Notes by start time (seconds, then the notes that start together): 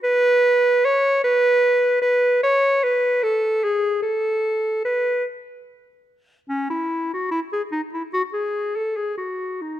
0.03 B4
0.85 C#5
1.24 B4
2.02 B4
2.43 C#5
2.84 B4
3.23 A4
3.64 G#4
4.02 A4
4.85 B4
6.49 C#4
6.70 E4
7.13 F#4
7.31 E4
7.53 G#4
7.72 D#4
7.94 E4
8.13 F#4
8.33 G#4
8.76 A4
8.96 G#4
9.17 F#4
9.61 D#4